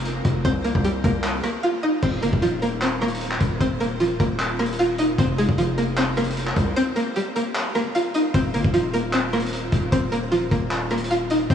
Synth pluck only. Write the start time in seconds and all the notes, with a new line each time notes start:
Already playing: A#3 A#4
0.45 C4 C5
0.64 A#3 A#4
0.85 G3 G4
1.04 A#3 A#4
1.43 A#3 A#4
1.63 F4 F5
1.83 D#4 D#5
2.03 C4 C5
2.22 A#3 A#4
2.42 F3 F4
2.62 A#3 A#4
2.82 C4 C5
3.02 A#3 A#4
3.61 C4 C5
3.80 A#3 A#4
4.00 F3 F4
4.20 A#3 A#4
4.59 A#3 A#4
4.79 F4 F5
4.99 D#4 D#5
5.19 C4 C5
5.38 G#3 G#4
5.58 F3 F4
5.78 A#3 A#4
5.97 C4 C5
6.17 A#3 A#4
6.76 C4 C5
6.96 A#3 A#4
7.16 G3 G4
7.36 A#3 A#4
7.75 A#3 A#4
7.95 F4 F5
8.15 D#4 D#5
8.34 C4 C5
8.54 A#3 A#4
8.74 F3 F4
8.94 A#3 A#4
9.13 C4 C5
9.33 A#3 A#4
9.92 C4 C5
10.12 A#3 A#4
10.32 F3 F4
10.51 A#3 A#4
10.91 A#3 A#4
11.11 F4 F5
11.30 D#4 D#5
11.50 C4 C5